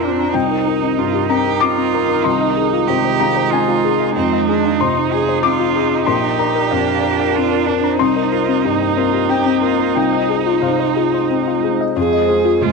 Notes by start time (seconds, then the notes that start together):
Already playing: A#1 F2 C4 D4 F4 C5 D5 F5 A#5
0.02 D4 F4 D5
0.19 A#5
0.34 C2 D#3 C4 D#4 G4 A#4 G5
0.51 A#4
0.65 D#4 A#4
0.83 C4
0.98 G2 F4 G4
1.15 G4
1.30 C4 G4 A#4 A#5
1.46 G4
1.60 C4 F4 D6
1.77 C4
1.94 A#4
2.09 A#4
2.24 C2 G#3 D#4 F4 C6
2.41 D#5
2.57 G#4
2.73 F4
2.87 C3 G4 C5
3.04 C5
3.20 G#3 F4 A#5
3.36 C5
3.50 C4 F4 G#5
3.68 F4
3.84 G#4
4.00 D#5
4.15 F2 C4 D#4 F4
4.33 D#5
4.48 D4 G#4
4.65 F4
4.80 C3 D#4 C5 C6
4.96 C5
5.12 F4 G#4
5.29 C5
5.43 C4 F4 D6
5.60 F4
5.76 G#4
5.92 D#5
6.07 A#1 G4 A#4 C5 D5 C6
6.24 A#5
6.39 A#4 D5 A#5
6.55 A#4
6.71 F2 D4 F5
6.87 F5
7.03 A#4
7.19 F5
7.36 C4 F4
7.51 A#4
7.67 D4 A#4 D5
7.84 A#5
7.99 C2 A#3 C4 D#4 C6
8.16 A#4
8.32 D#4 F4 A#4
8.49 C4
8.64 G2 D#4 G4
8.81 G4
8.97 C4 F4 A#4
9.13 G4
9.29 C4 G4 G5
9.46 C4
9.62 D#4 F4 A#4
9.80 A#4
9.95 C2 G#3 D#4 F4 G5
10.13 D#5
10.28 G#4
10.46 F4
10.62 C3 C5 F5
10.80 C5
10.95 F4 G#4
11.14 C5
11.30 C4
11.47 F4
11.63 G#4
11.81 D#5
11.96 F2 D#3 C4 F4 G#4 C5
12.13 D#5
12.28 F4 G#4
12.45 F4
12.61 C3 G#3 F4 C5